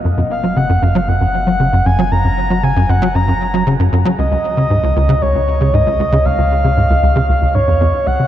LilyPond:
<<
  \new Staff \with { instrumentName = "Soft synth lead" } { \time 4/4 \key fis \major \tempo 4 = 116 r8 eis''8 fis''8 eis''8 fis''4. gis''8 | ais''4 gis''8 fis''8 ais''4 r4 | dis''2 cis''4 dis''4 | eis''2~ eis''8 cis''4 fis''8 | }
  \new Staff \with { instrumentName = "Analog synth bass" } { \clef bass \time 4/4 \key fis \major fis,16 fis,16 r16 fis16 cis16 fis,16 fis,16 fis16 fis,16 fis,16 r16 fis16 cis16 fis,16 fis,16 fis16 | fis,16 fis,16 r16 fis16 cis16 fis,16 fis,16 fis16 fis,16 fis,16 r16 fis16 cis16 fis,16 fis,16 fis16 | cis,16 cis,16 r16 cis16 gis,16 cis,16 cis,16 cis16 cis,16 cis,16 r16 cis16 gis,16 cis,16 cis,16 cis16 | cis,16 cis,16 r16 cis16 gis,16 cis,16 cis,16 cis16 cis,16 cis,16 gis,16 eis,16 eis,16 r16 cis,16 cis16 | }
  \new Staff \with { instrumentName = "Sub bass" } { \clef bass \time 4/4 \key fis \major fis,,1~ | fis,,1 | cis,1~ | cis,1 | }
>>